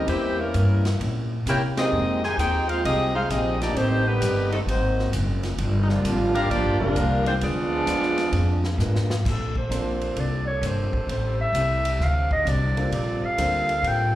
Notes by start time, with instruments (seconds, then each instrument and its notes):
0.07 upright bass E2, hollow-body jazz guitar C3 A#3, trombone section E3 G3 C4, saxophone section A#3 E4 G4 C5, ride
0.11 hollow-body jazz guitar C#4 E4
0.38 trombone section E3 G3 A#3, saxophone section G3 C#4 E4 A#4
0.54 upright bass G2, hollow-body jazz guitar C3 A#3 C#4 E4, hi-hat pedal, ride
0.85 snare, ride
1.00 upright bass A#2, hollow-body jazz guitar C3 A#3 C#4 E4, ride
1.46 upright bass C3, hollow-body jazz guitar C3 A#3 C#4 E4, trombone section A#3 E4 G4, saxophone section E4 A#4, hi-hat pedal, ride
1.50 saxophone section C#5 G5
1.77 grand piano G#3 A#3 C4 D#4 G4, trombone section G#3 C4 D#4, saxophone section C4 G4 G#4 D#5, snare, ride
1.92 upright bass F2, hollow-body jazz guitar F3 A#3 D#4, grand piano G#3 A#3 C4 D#4 G4
1.96 hollow-body jazz guitar G#4
2.23 trombone section C3 D#3 G#3, saxophone section D#4 G4 C5 G#5, snare
2.38 upright bass D#2, hollow-body jazz guitar F3 A#3 D#4, trombone section C4 D#4 G4, saxophone section D#4 G#4 C5 G5, hi-hat pedal, ride
2.42 hollow-body jazz guitar G#4
2.69 trombone section G#3 C4 F4, saxophone section D#4 G#4 C5 F5, ride
2.84 upright bass C2, hollow-body jazz guitar F3 A#3, trombone section G#3 C4 D#4, saxophone section C4 G4 G#4 D#5, ride
2.88 hollow-body jazz guitar D#4 G#4
3.15 trombone section G#3 C4 F4, saxophone section D#4 G#4 C5 F5
3.30 upright bass A#1, hollow-body jazz guitar F3 A#3 D#4 G#4, trombone section G#3 C4 D#4, saxophone section C4 G4 G#4 D#5, hi-hat pedal, ride
3.60 saxophone section A#3 D#4 G4 D5, trombone section D4, snare, ride
3.75 upright bass A1, hollow-body jazz guitar A2 G3, trombone section D#3 G3 C4, grand piano A3 B3 C4 D#4 G4, saxophone section A3 D#4 G4 C5, ride
3.79 hollow-body jazz guitar C4 D#4
4.06 trombone section D#3 G3 B3, saxophone section A3 D#4 G4 B4
4.21 upright bass G1, hollow-body jazz guitar A2 G3 C4 D#4, hi-hat pedal, ride
4.51 trombone section C3 D#3 A3, saxophone section G3 C4 D#4 A4, ride
4.66 upright bass G#1, hollow-body jazz guitar G#2 F#3, trombone section D#3 F#3 C4, ride
4.70 hollow-body jazz guitar A#3 C4, saxophone section A#3 D#4 F#4 C5
4.99 snare
5.12 upright bass F#1, hollow-body jazz guitar G#2 F#3 A#3, hi-hat pedal, ride
5.17 hollow-body jazz guitar C4
5.43 snare, ride
5.58 upright bass G1, hollow-body jazz guitar G2 F3 A#3, ride
5.63 hollow-body jazz guitar D4
5.82 saxophone section D#4
5.89 trombone section A#2 D3 F3, saxophone section G3 A#3 D4 F4, snare
6.03 upright bass G#1, hollow-body jazz guitar G2 F3 A#3, hi-hat pedal, ride
6.08 hollow-body jazz guitar D4
6.35 trombone section A#3 D4 F4, saxophone section D4 G4 A#4 F5, ride
6.50 upright bass A#1, hollow-body jazz guitar G2 F3 A#3, trombone section F3 A#3 D4, saxophone section A#3 F4 G4 D5, ride
6.54 hollow-body jazz guitar D4
6.65 upright bass G1
6.80 upright bass F1, trombone section D3 F3 A#3, saxophone section G3 D4 F4 A#4, grand piano G3 A#3 D4 F4 G4
6.96 upright bass C2, hollow-body jazz guitar G2 F3 A#3 D4, hi-hat pedal, ride
7.26 saxophone section G#3 D4 F4 C5, trombone section C4, ride
7.41 upright bass D2, hollow-body jazz guitar A#2 G#3 B3 D4, trombone section F3 G#3 D4, saxophone section B3 F4 G#4 D5, ride
7.86 upright bass D#2, hollow-body jazz guitar A#2 G#3 B3 D4, hi-hat pedal, ride
8.03 snare
8.18 snare, ride
8.32 upright bass F2, hollow-body jazz guitar A#2 G#3 B3, ride
8.36 hollow-body jazz guitar D4
8.64 snare
8.78 upright bass G#2, hollow-body jazz guitar A#2 G#3 B3 D4, grand piano G#3 B3 D4 F4 A#4, snare, hi-hat pedal
8.95 snare
9.10 snare
9.24 upright bass A#2, saxophone section C3 A#3 D4 A4, hollow-body jazz guitar A#3 D4 A4 C5, clarinet A4, kick, snare, crash
9.55 clarinet C5, kick
9.69 upright bass A#1, hollow-body jazz guitar A#3 D4 A4 C5, grand piano A#3 C4 D4 F4 A4, hi-hat pedal, ride
10.01 ride
10.16 upright bass C2, hollow-body jazz guitar A#3 D4 A4 C5, ride
10.20 clarinet D5
10.47 clarinet C#5
10.61 upright bass G1, hollow-body jazz guitar A#3 D4 A4 C5, hi-hat pedal, ride
10.67 clarinet C5
10.93 muted upright bass stroke, kick
11.07 upright bass A1, saxophone section G3 E4, hollow-body jazz guitar A3 E4 G4, clarinet C5, ride
11.12 hollow-body jazz guitar C5
11.41 clarinet E5
11.53 upright bass C2, hollow-body jazz guitar A3 E4 G4, hi-hat pedal, ride
11.57 hollow-body jazz guitar C5
11.85 ride
11.99 upright bass D2, hollow-body jazz guitar D3 C4 F#4, saxophone section F#3 C4 D4, snare
12.03 hollow-body jazz guitar A#4, clarinet F5
12.31 clarinet D#5, kick
12.45 upright bass C2, hollow-body jazz guitar D3 C4 F#4 A#4, clarinet D5, hi-hat pedal, ride
12.77 grand piano A#3 D4 F4 A4 C5, ride
12.91 upright bass A#1, hollow-body jazz guitar G3 C4 F4 A#4, saxophone section F4 A4, clarinet D5, ride
13.22 clarinet F5, muted upright bass stroke
13.37 upright bass D2, hollow-body jazz guitar G3 C4 F4 A#4, grand piano A#3 D4 F4 A4 C5, hi-hat pedal, ride
13.69 ride
13.83 upright bass A2, hollow-body jazz guitar G3 C4 F4, ride
13.87 hollow-body jazz guitar A#4, clarinet G5